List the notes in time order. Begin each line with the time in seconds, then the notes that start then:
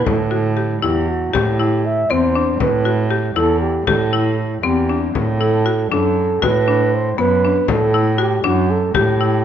0.06 A2 A4, frame drum
0.31 F#4, frame drum
0.57 G4
0.82 E2 E4 G4, frame drum
1.09 F#4
1.33 A2 G4, frame drum
1.60 E4, frame drum
1.85 E5
2.10 E2 C4 C5, frame drum
2.35 D4
2.60 A2 B4, frame drum
2.85 F#4, frame drum
3.11 G4
3.36 E2 E4 A4, frame drum
3.61 G4
3.86 A2 G4 A4, frame drum
4.12 E4, frame drum
4.62 E2 C4 G4, frame drum
4.89 D4, frame drum
5.15 A2, frame drum
5.40 E4 A4, frame drum
5.66 F#4
5.91 F#2 D4 A4, frame drum
6.42 A2 F#4 B4, frame drum
6.68 D4, frame drum
6.94 C5
7.18 F#2 B3 B4, frame drum
7.45 D4
7.68 A2 A4, frame drum
7.94 E4, frame drum
8.18 F#4 G4
8.44 F#2 D4 F#4, frame drum
8.70 A4
8.94 A2 G4, frame drum
9.21 E4